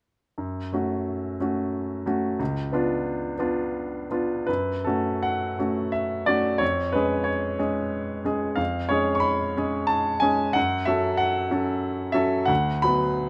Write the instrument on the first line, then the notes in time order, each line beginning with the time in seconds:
grand piano
0.38 F#2
0.73 A3 C#4 F#4
1.40 A3 C#4 F#4
2.06 A3 C#4 F#4
2.40 C#2
2.72 B3 D4 F4
3.39 B3 D4 F4
4.11 B3 D4 F4
4.47 F#2 B4
4.84 A3 C#4 F#4 A4
5.23 F#5
5.59 A3 C#4 F#4
5.92 E5
6.26 A3 C#4 F#4 D5
6.58 F2 C#5
6.93 G#3 C#4 G#4 B4
7.24 C#5
7.58 G#3 C#4 G#4
8.25 G#3 C#4 G#4
8.56 F2 F5
8.89 G#3 C#4 G#4 C#5
9.15 C#6
9.20 B5
9.57 G#3 C#4 G#4
9.87 A5
10.20 G#3 C#4 G#4 G#5
10.53 F#2 F#5
10.85 F#3 C#4 A4 E5
11.17 F#5
11.51 F#3 C#4 A4
12.12 F#3 C#4 A4 E5
12.46 D2 F#5
12.82 F#3 B3 B4 B5